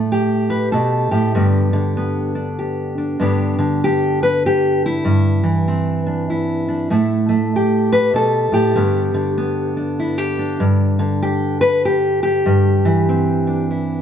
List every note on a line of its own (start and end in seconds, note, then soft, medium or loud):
0.00 0.73 A2 medium
0.00 1.33 A3 medium
0.12 1.10 G4 medium
0.50 0.72 B4 medium
0.72 1.11 B2 medium
0.72 1.35 A4 medium
1.11 1.35 A2 medium
1.11 2.35 G4 medium
1.35 3.19 G2 medium
1.35 1.72 D3 soft
1.35 1.97 B3 soft
1.73 3.19 D3 medium
1.97 3.18 B3 soft
2.35 2.97 D4 soft
2.59 3.22 G4 soft
2.98 3.22 D4 soft
3.20 5.03 G2 medium
3.20 3.57 D3 medium
3.20 5.03 B3 medium
3.20 5.04 D4 medium
3.20 3.84 G4 medium
3.59 5.43 D3 medium
3.84 4.22 G4 loud
4.23 4.45 B4 loud
4.46 4.84 G4 medium
4.86 6.29 E4 medium
5.05 6.88 G2 medium
5.43 6.88 E3 medium
5.68 6.88 C4 soft
6.07 6.67 D4 medium
6.30 6.91 E4 soft
6.68 6.88 D4 soft
6.90 8.13 A2 medium
6.90 7.28 A3 medium
6.90 7.53 E4 soft
6.90 7.92 A4 medium
7.29 8.73 A3 medium
7.56 8.52 G4 medium
7.92 8.15 B4 loud
8.13 8.51 B2 medium
8.13 8.77 A4 loud
8.52 8.76 A2 medium
8.52 9.76 G4 medium
8.75 10.60 G2 medium
8.75 9.13 D3 medium
8.75 9.37 B3 medium
9.14 10.98 D3 medium
9.38 10.58 B3 soft
9.77 10.39 D4 soft
9.99 10.18 E4 medium
10.18 10.61 G4 soft
10.39 12.88 D4 soft
10.60 12.45 G2 medium
10.99 12.84 D3 medium
11.22 11.61 G4 medium
11.61 11.84 B4 loud
11.85 12.22 G4 medium
12.23 13.70 G4 medium
12.46 14.02 G2 medium
12.85 14.02 E3 medium
13.09 14.02 C4 medium
13.47 14.02 D4 soft
13.71 14.02 E4 soft